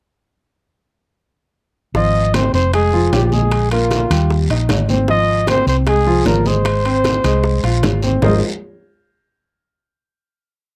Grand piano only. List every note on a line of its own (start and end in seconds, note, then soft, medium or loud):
1.95 2.27 F3 medium
1.95 2.27 F4 medium
2.34 2.66 C4 medium
2.34 2.67 C5 medium
2.74 2.90 G#3 medium
2.74 2.90 G#4 medium
2.93 3.25 F3 medium
2.93 3.25 F4 medium
3.33 3.65 G#3 medium
3.33 3.65 G#4 medium
3.72 4.04 A#3 medium
3.72 4.04 A#4 medium
4.11 4.43 G3 medium
4.11 4.43 G4 medium
4.50 4.82 D#4 medium
4.50 4.82 D#5 medium
4.90 5.05 C4 medium
4.90 5.06 C5 medium
5.09 5.41 F3 medium
5.09 5.41 F4 medium
5.48 5.80 C4 medium
5.48 5.80 C5 medium
5.87 6.03 G#3 medium
5.87 6.03 G#4 medium
6.07 6.39 F3 medium
6.07 6.39 F4 medium
6.46 6.78 G#3 medium
6.46 6.78 G#4 medium
6.85 7.17 C4 medium
6.85 7.18 C5 medium
7.24 7.56 G#3 medium
7.24 7.57 G#4 medium
7.64 7.96 F4 medium
7.64 7.96 F5 medium
8.03 8.19 C4 medium
8.03 8.19 C5 medium
8.23 8.41 G#3 medium
8.23 8.41 D#4 medium
8.23 8.41 F4 medium
8.23 8.41 G#4 medium
8.23 8.41 A#4 medium
8.23 8.41 C5 medium